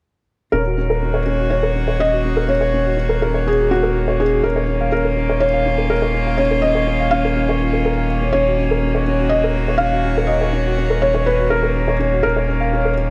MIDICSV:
0, 0, Header, 1, 5, 480
1, 0, Start_track
1, 0, Key_signature, -6, "minor"
1, 0, Tempo, 487805
1, 526, Time_signature, 4, 2, 24, 8
1, 12891, End_track
2, 0, Start_track
2, 0, Title_t, "Felt piano"
2, 0, Program_c, 0, 0
2, 513, Note_on_c, 0, 70, 78
2, 1201, Note_off_c, 0, 70, 0
2, 1478, Note_on_c, 0, 73, 71
2, 1970, Note_on_c, 0, 75, 86
2, 1977, Note_off_c, 0, 73, 0
2, 2446, Note_on_c, 0, 73, 68
2, 2463, Note_off_c, 0, 75, 0
2, 2893, Note_off_c, 0, 73, 0
2, 3171, Note_on_c, 0, 70, 64
2, 3416, Note_off_c, 0, 70, 0
2, 3420, Note_on_c, 0, 68, 71
2, 3651, Note_on_c, 0, 66, 73
2, 3660, Note_off_c, 0, 68, 0
2, 4132, Note_on_c, 0, 68, 65
2, 4143, Note_off_c, 0, 66, 0
2, 4365, Note_on_c, 0, 70, 71
2, 4376, Note_off_c, 0, 68, 0
2, 4830, Note_off_c, 0, 70, 0
2, 4844, Note_on_c, 0, 70, 77
2, 5317, Note_on_c, 0, 73, 80
2, 5340, Note_off_c, 0, 70, 0
2, 5804, Note_on_c, 0, 70, 76
2, 5816, Note_off_c, 0, 73, 0
2, 6275, Note_on_c, 0, 73, 78
2, 6300, Note_off_c, 0, 70, 0
2, 6512, Note_on_c, 0, 75, 79
2, 6528, Note_off_c, 0, 73, 0
2, 6994, Note_on_c, 0, 77, 83
2, 7014, Note_off_c, 0, 75, 0
2, 7921, Note_off_c, 0, 77, 0
2, 8193, Note_on_c, 0, 73, 84
2, 8880, Note_off_c, 0, 73, 0
2, 9145, Note_on_c, 0, 75, 85
2, 9621, Note_on_c, 0, 77, 88
2, 9651, Note_off_c, 0, 75, 0
2, 10106, Note_on_c, 0, 75, 74
2, 10128, Note_off_c, 0, 77, 0
2, 10562, Note_off_c, 0, 75, 0
2, 10842, Note_on_c, 0, 73, 84
2, 11084, Note_on_c, 0, 71, 83
2, 11092, Note_off_c, 0, 73, 0
2, 11319, Note_on_c, 0, 70, 85
2, 11332, Note_off_c, 0, 71, 0
2, 11769, Note_off_c, 0, 70, 0
2, 12034, Note_on_c, 0, 70, 86
2, 12721, Note_off_c, 0, 70, 0
2, 12891, End_track
3, 0, Start_track
3, 0, Title_t, "Upright piano"
3, 0, Program_c, 1, 0
3, 524, Note_on_c, 1, 61, 80
3, 594, Note_off_c, 1, 61, 0
3, 644, Note_on_c, 1, 66, 60
3, 735, Control_c, 1, 64, 127
3, 759, Note_off_c, 1, 66, 0
3, 763, Note_on_c, 1, 61, 58
3, 879, Note_off_c, 1, 61, 0
3, 884, Note_on_c, 1, 70, 79
3, 954, Note_off_c, 1, 70, 0
3, 1004, Note_on_c, 1, 61, 63
3, 1074, Note_off_c, 1, 61, 0
3, 1120, Note_on_c, 1, 73, 74
3, 1237, Note_off_c, 1, 73, 0
3, 1242, Note_on_c, 1, 61, 80
3, 1313, Note_off_c, 1, 61, 0
3, 1367, Note_on_c, 1, 66, 59
3, 1481, Note_off_c, 1, 66, 0
3, 1482, Note_on_c, 1, 61, 63
3, 1598, Note_off_c, 1, 61, 0
3, 1603, Note_on_c, 1, 70, 74
3, 1673, Note_off_c, 1, 70, 0
3, 1724, Note_on_c, 1, 61, 57
3, 1794, Note_off_c, 1, 61, 0
3, 1847, Note_on_c, 1, 73, 77
3, 1961, Note_off_c, 1, 73, 0
3, 1963, Note_on_c, 1, 61, 77
3, 2033, Note_off_c, 1, 61, 0
3, 2087, Note_on_c, 1, 66, 60
3, 2201, Note_off_c, 1, 66, 0
3, 2212, Note_on_c, 1, 61, 58
3, 2323, Note_off_c, 1, 61, 0
3, 2328, Note_on_c, 1, 70, 79
3, 2396, Note_off_c, 1, 70, 0
3, 2442, Note_on_c, 1, 61, 66
3, 2513, Note_off_c, 1, 61, 0
3, 2568, Note_on_c, 1, 73, 81
3, 2681, Note_off_c, 1, 73, 0
3, 2691, Note_on_c, 1, 61, 79
3, 2757, Note_off_c, 1, 61, 0
3, 2807, Note_on_c, 1, 66, 62
3, 2921, Note_off_c, 1, 66, 0
3, 2923, Note_on_c, 1, 61, 65
3, 3039, Note_off_c, 1, 61, 0
3, 3042, Note_on_c, 1, 70, 75
3, 3113, Note_off_c, 1, 70, 0
3, 3164, Note_on_c, 1, 61, 57
3, 3234, Note_off_c, 1, 61, 0
3, 3289, Note_on_c, 1, 73, 74
3, 3402, Note_off_c, 1, 73, 0
3, 3407, Note_on_c, 1, 61, 74
3, 3475, Note_off_c, 1, 61, 0
3, 3530, Note_on_c, 1, 66, 61
3, 3642, Note_off_c, 1, 66, 0
3, 3650, Note_on_c, 1, 61, 58
3, 3762, Note_off_c, 1, 61, 0
3, 3768, Note_on_c, 1, 70, 77
3, 3836, Note_off_c, 1, 70, 0
3, 3890, Note_on_c, 1, 61, 65
3, 3957, Note_off_c, 1, 61, 0
3, 4013, Note_on_c, 1, 73, 80
3, 4124, Note_off_c, 1, 73, 0
3, 4133, Note_on_c, 1, 61, 84
3, 4198, Note_off_c, 1, 61, 0
3, 4250, Note_on_c, 1, 66, 66
3, 4362, Note_off_c, 1, 66, 0
3, 4370, Note_on_c, 1, 61, 63
3, 4377, Control_c, 1, 64, 0
3, 4483, Note_off_c, 1, 61, 0
3, 4487, Note_on_c, 1, 73, 78
3, 4547, Control_c, 1, 64, 127
3, 4555, Note_off_c, 1, 73, 0
3, 4611, Note_on_c, 1, 61, 63
3, 4677, Note_off_c, 1, 61, 0
3, 4729, Note_on_c, 1, 77, 83
3, 4842, Note_off_c, 1, 77, 0
3, 4845, Note_on_c, 1, 61, 81
3, 4914, Note_off_c, 1, 61, 0
3, 4967, Note_on_c, 1, 70, 59
3, 5081, Note_off_c, 1, 70, 0
3, 5084, Note_on_c, 1, 61, 64
3, 5199, Note_off_c, 1, 61, 0
3, 5210, Note_on_c, 1, 73, 74
3, 5277, Note_off_c, 1, 73, 0
3, 5326, Note_on_c, 1, 61, 64
3, 5395, Note_off_c, 1, 61, 0
3, 5446, Note_on_c, 1, 77, 82
3, 5560, Note_off_c, 1, 77, 0
3, 5569, Note_on_c, 1, 61, 81
3, 5636, Note_off_c, 1, 61, 0
3, 5688, Note_on_c, 1, 70, 60
3, 5801, Note_off_c, 1, 70, 0
3, 5805, Note_on_c, 1, 61, 64
3, 5920, Note_off_c, 1, 61, 0
3, 5926, Note_on_c, 1, 73, 77
3, 5994, Note_off_c, 1, 73, 0
3, 6046, Note_on_c, 1, 61, 65
3, 6115, Note_off_c, 1, 61, 0
3, 6168, Note_on_c, 1, 77, 87
3, 6281, Note_off_c, 1, 77, 0
3, 6285, Note_on_c, 1, 61, 84
3, 6354, Note_off_c, 1, 61, 0
3, 6405, Note_on_c, 1, 70, 60
3, 6520, Note_off_c, 1, 70, 0
3, 6525, Note_on_c, 1, 61, 61
3, 6640, Note_off_c, 1, 61, 0
3, 6644, Note_on_c, 1, 73, 79
3, 6714, Note_off_c, 1, 73, 0
3, 6762, Note_on_c, 1, 61, 68
3, 6833, Note_off_c, 1, 61, 0
3, 6890, Note_on_c, 1, 77, 82
3, 7002, Note_off_c, 1, 77, 0
3, 7009, Note_on_c, 1, 61, 85
3, 7076, Note_off_c, 1, 61, 0
3, 7131, Note_on_c, 1, 70, 60
3, 7243, Note_off_c, 1, 70, 0
3, 7247, Note_on_c, 1, 61, 62
3, 7361, Note_off_c, 1, 61, 0
3, 7371, Note_on_c, 1, 73, 80
3, 7437, Note_off_c, 1, 73, 0
3, 7492, Note_on_c, 1, 65, 56
3, 7603, Note_off_c, 1, 65, 0
3, 7607, Note_on_c, 1, 70, 60
3, 7675, Note_off_c, 1, 70, 0
3, 7728, Note_on_c, 1, 70, 77
3, 7841, Note_off_c, 1, 70, 0
3, 7844, Note_on_c, 1, 77, 59
3, 7954, Note_off_c, 1, 77, 0
3, 7969, Note_on_c, 1, 77, 61
3, 8081, Note_off_c, 1, 77, 0
3, 8084, Note_on_c, 1, 61, 65
3, 8195, Note_off_c, 1, 61, 0
3, 8210, Note_on_c, 1, 61, 83
3, 8218, Control_c, 1, 64, 0
3, 8277, Note_off_c, 1, 61, 0
3, 8328, Note_on_c, 1, 66, 63
3, 8418, Control_c, 1, 64, 127
3, 8442, Note_off_c, 1, 66, 0
3, 8448, Note_on_c, 1, 61, 56
3, 8561, Note_off_c, 1, 61, 0
3, 8571, Note_on_c, 1, 70, 77
3, 8637, Note_off_c, 1, 70, 0
3, 8686, Note_on_c, 1, 61, 60
3, 8755, Note_off_c, 1, 61, 0
3, 8805, Note_on_c, 1, 73, 79
3, 8920, Note_off_c, 1, 73, 0
3, 8927, Note_on_c, 1, 61, 84
3, 8995, Note_off_c, 1, 61, 0
3, 9050, Note_on_c, 1, 66, 61
3, 9162, Note_off_c, 1, 66, 0
3, 9168, Note_on_c, 1, 61, 65
3, 9281, Note_off_c, 1, 61, 0
3, 9287, Note_on_c, 1, 70, 83
3, 9355, Note_off_c, 1, 70, 0
3, 9402, Note_on_c, 1, 61, 61
3, 9472, Note_off_c, 1, 61, 0
3, 9527, Note_on_c, 1, 73, 74
3, 9641, Note_off_c, 1, 73, 0
3, 9643, Note_on_c, 1, 61, 79
3, 9713, Note_off_c, 1, 61, 0
3, 9766, Note_on_c, 1, 66, 63
3, 9880, Note_off_c, 1, 66, 0
3, 9892, Note_on_c, 1, 61, 66
3, 10003, Note_off_c, 1, 61, 0
3, 10012, Note_on_c, 1, 70, 79
3, 10078, Note_off_c, 1, 70, 0
3, 10127, Note_on_c, 1, 61, 69
3, 10195, Note_off_c, 1, 61, 0
3, 10247, Note_on_c, 1, 73, 85
3, 10360, Note_on_c, 1, 61, 77
3, 10361, Note_off_c, 1, 73, 0
3, 10431, Note_off_c, 1, 61, 0
3, 10488, Note_on_c, 1, 66, 64
3, 10601, Note_off_c, 1, 66, 0
3, 10607, Note_on_c, 1, 61, 64
3, 10721, Note_off_c, 1, 61, 0
3, 10727, Note_on_c, 1, 70, 76
3, 10795, Note_off_c, 1, 70, 0
3, 10849, Note_on_c, 1, 61, 65
3, 10916, Note_off_c, 1, 61, 0
3, 10967, Note_on_c, 1, 73, 81
3, 11081, Note_off_c, 1, 73, 0
3, 11089, Note_on_c, 1, 61, 79
3, 11156, Note_off_c, 1, 61, 0
3, 11206, Note_on_c, 1, 66, 65
3, 11321, Note_off_c, 1, 66, 0
3, 11328, Note_on_c, 1, 61, 62
3, 11441, Note_off_c, 1, 61, 0
3, 11445, Note_on_c, 1, 70, 79
3, 11514, Note_off_c, 1, 70, 0
3, 11563, Note_on_c, 1, 61, 68
3, 11633, Note_off_c, 1, 61, 0
3, 11690, Note_on_c, 1, 73, 83
3, 11802, Note_off_c, 1, 73, 0
3, 11803, Note_on_c, 1, 61, 91
3, 11873, Note_off_c, 1, 61, 0
3, 11927, Note_on_c, 1, 66, 64
3, 12041, Note_off_c, 1, 66, 0
3, 12049, Note_on_c, 1, 61, 69
3, 12060, Control_c, 1, 64, 0
3, 12162, Note_off_c, 1, 61, 0
3, 12167, Note_on_c, 1, 73, 81
3, 12235, Note_off_c, 1, 73, 0
3, 12259, Control_c, 1, 64, 127
3, 12287, Note_on_c, 1, 61, 65
3, 12355, Note_off_c, 1, 61, 0
3, 12403, Note_on_c, 1, 77, 84
3, 12519, Note_off_c, 1, 77, 0
3, 12527, Note_on_c, 1, 61, 84
3, 12595, Note_off_c, 1, 61, 0
3, 12646, Note_on_c, 1, 70, 63
3, 12760, Note_off_c, 1, 70, 0
3, 12767, Note_on_c, 1, 61, 70
3, 12881, Note_off_c, 1, 61, 0
3, 12891, End_track
4, 0, Start_track
4, 0, Title_t, "String quartet"
4, 0, Program_c, 2, 48
4, 528, Note_on_c, 2, 51, 49
4, 901, Note_on_c, 2, 58, 65
4, 968, Note_on_c, 2, 66, 61
4, 1178, Note_on_c, 2, 61, 65
4, 4367, Note_off_c, 2, 66, 0
4, 4989, Note_on_c, 2, 65, 60
4, 8207, Note_off_c, 2, 65, 0
4, 8800, Note_on_c, 2, 66, 63
4, 12047, Note_off_c, 2, 66, 0
4, 12891, Note_off_c, 2, 51, 0
4, 12891, Note_off_c, 2, 58, 0
4, 12891, Note_off_c, 2, 61, 0
4, 12891, End_track
5, 0, Start_track
5, 0, Title_t, "Sub bass"
5, 0, Program_c, 3, 38
5, 519, Note_on_c, 3, 27, 79
5, 4339, Note_off_c, 3, 27, 0
5, 4360, Note_on_c, 3, 27, 76
5, 8179, Note_off_c, 3, 27, 0
5, 8203, Note_on_c, 3, 27, 82
5, 12021, Note_off_c, 3, 27, 0
5, 12041, Note_on_c, 3, 27, 78
5, 12891, Note_off_c, 3, 27, 0
5, 12891, End_track
0, 0, End_of_file